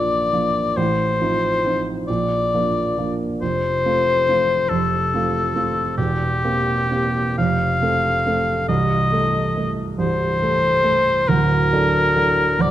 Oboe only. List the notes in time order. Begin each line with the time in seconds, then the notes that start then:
Already playing: D5
0.77 C5
2.08 D5
3.41 C5
4.69 A4
5.98 G4
7.38 F5
8.69 D#5
9.99 C5
11.28 A#4
12.61 D5